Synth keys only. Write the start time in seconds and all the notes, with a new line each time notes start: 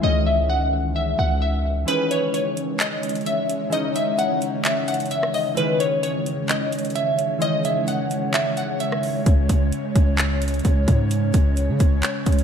Already playing: D#3 G#3 C#4
0.00 E3 G#3 C#4
0.04 D#3
1.85 E3 G#3 C#4
1.90 D#3
3.70 E3 G#3 C#4
3.74 D#4
5.55 E3 G#3 C#4
5.59 D#3
7.39 E3 G#3 C#4
7.43 D#3